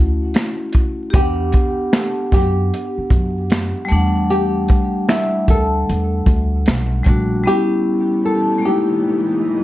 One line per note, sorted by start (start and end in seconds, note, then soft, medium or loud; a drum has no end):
0.00 0.32 D2 medium
0.00 0.68 A3 medium
0.00 0.70 C#4 medium
0.00 0.71 E4 medium
0.00 0.73 F#4 medium
0.34 finger snap medium
0.34 snare loud
0.34 closed hi-hat medium
0.73 kick medium
0.73 closed hi-hat medium
1.10 3.86 B3 medium
1.10 3.84 G4 medium
1.10 kick loud
1.14 1.51 E2 medium
1.14 3.88 D4 medium
1.14 1.94 G4 loud
1.14 closed hi-hat medium
1.21 3.89 F#5 medium
1.52 kick medium
1.52 closed hi-hat medium
1.93 2.29 A4 medium
1.93 finger snap medium
1.93 snare loud
1.93 closed hi-hat medium
2.32 2.69 F#2 medium
2.32 2.93 G4 medium
2.32 kick medium
2.32 snare soft
2.32 closed hi-hat medium
2.74 closed hi-hat medium
2.98 muted upright bass stroke soft
3.10 3.71 F#2 medium
3.10 kick medium
3.10 closed hi-hat medium
3.50 finger snap medium
3.50 snare loud
3.50 closed hi-hat medium
3.85 6.99 G3 medium
3.85 7.01 A3 medium
3.85 closed hi-hat medium
3.92 4.66 E2 medium
3.92 7.03 D4 medium
3.96 7.05 F#5 medium
4.30 5.05 G4 loud
4.30 closed hi-hat medium
4.68 kick medium
4.68 closed hi-hat medium
5.09 5.45 E4 medium
5.09 finger snap medium
5.09 snare medium
5.09 closed hi-hat medium
5.48 5.85 D2 medium
5.48 7.42 A4 medium
5.48 kick medium
5.48 closed hi-hat medium
5.89 6.25 E2 medium
5.89 closed hi-hat medium
6.26 6.63 D2 medium
6.26 kick medium
6.26 closed hi-hat medium
6.66 7.04 B1 medium
6.66 finger snap medium
6.66 snare loud
6.66 closed hi-hat medium
7.03 7.43 A#1 medium
7.03 7.42 G3 medium
7.03 7.45 A3 medium
7.03 7.46 D4 soft
7.03 kick medium
7.03 closed hi-hat medium
7.09 7.47 F#4 medium
7.44 9.64 E3 medium
7.44 8.63 G3 medium
7.44 8.64 B3 medium
7.44 8.65 C#4 medium
7.44 8.21 G4 loud
7.49 8.65 E4 medium
8.25 8.60 A4 medium
8.58 9.64 G#3 medium
8.58 9.64 A#3 soft
8.63 9.64 F#3 medium
8.63 9.64 G#3 medium
8.63 9.64 A#3 medium
8.63 9.64 D#4 medium
8.63 9.25 G4 medium
8.63 9.64 D#5 medium
8.68 9.64 E4 medium